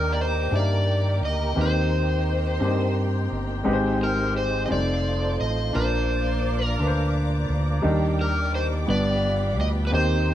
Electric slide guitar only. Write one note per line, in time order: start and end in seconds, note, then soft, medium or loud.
0.00 0.12 A#4 medium
0.12 0.18 D5 soft
0.21 0.55 C5 medium
0.56 1.20 D5 medium
1.25 1.59 D#5 medium
1.61 2.94 C5 medium
4.04 4.35 A#4 medium
4.38 4.62 C5 medium
4.66 4.71 D#5 medium
4.72 5.40 D5 medium
5.41 5.76 D#5 medium
5.75 6.66 C5 medium
6.66 7.11 A#4 medium
8.21 8.55 A#4 medium
8.55 8.64 C5 medium
8.90 9.60 D5 medium
9.61 9.68 D#5 medium
9.87 9.94 B4 medium
9.95 10.34 C5 medium